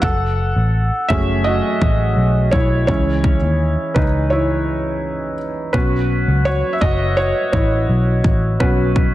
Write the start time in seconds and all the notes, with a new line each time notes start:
0.02 F#1 A4 F#5, kick
0.56 A1
1.08 F#1 F#3 A3 C#4 G#4 E5, kick
1.44 F#4 D#5
1.82 A1, kick
2.17 B1
2.51 B1 E4 C#5, kick
2.87 C#2 E3 G#3 C#4 E4 C#5, kick
3.24 kick
3.42 D#2
3.94 C#2 D#4 B4, kick
4.30 E4 C#5
5.73 B1 F#3 B3 C#4 F#4 B4, kick
6.28 C#2
6.45 F#4 C#5
6.73 E5
6.81 F#1 F#4 D#5, kick
7.17 F#4 C#5
7.52 A1 E4 C#5, kick
7.89 B1
8.24 A1, kick
8.60 B1 F#3 B3 C#4 F#4 B4, kick
8.96 kick